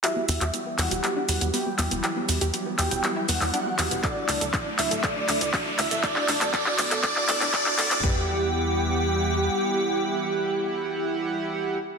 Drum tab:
HH |x-oxx-oxx-oxo-ox|x-oxx-oxx-oox-ox|x-oxx-oxx-oxo-ox|x-oxx-oxx-oox-ox|
SH |x-xxx-xxx-xxx-xx|x-xxx-xxx-xxx-xx|x-xxx-xxx-xxx-xx|x-xxx-xxx-xxx-xx|
CP |x--x--x-x-----x-|x-----x-x--x--x-|x-x-x-x-x-x-x-x-|xxxxxxxxxxxxxxxx|
FT |----------------|----------------|----------------|----------------|
BD |----------------|----------------|o---o---o---o---|o---o---o---o---|

HH |----------------|----------------|
SH |----------------|----------------|
CP |----------------|----------------|
FT |o---------------|----------------|
BD |o---------------|----------------|